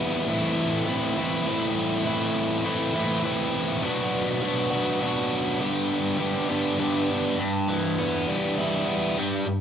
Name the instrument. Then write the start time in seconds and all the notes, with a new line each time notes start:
overdriven electric guitar
Already playing: E3 G3 B3 E4
0.27 A2 E3 A3 C4 E4
0.86 E3 A3 C4 E4
1.17 A2 E3 A3 C4 E4
1.46 E3 A3 C4 E4
2.05 A2 E3 A3 C4 E4
2.64 E3 A3 C4 E4
2.94 A2 E3 A3 C4 E4
3.24 E3 A3 C4 E4
3.82 B2 F#3 B3 D4 F#4
4.42 F#3 B3 D4 F#4
4.71 B2 F#3 B3 D4 F#4
5.01 F#3 B3 D4 F#4
5.60 G2 D3 G3 B3 D4 G4
6.18 G3 B3 D4 G4
6.48 G2 D3 G3 B3 D4 G4
6.78 G3 B3 D4 G4
7.38 G2
7.68 E3
7.98 B3
8.28 G3
8.58 E4
8.87 B3
9.17 G2 G3
9.47 G2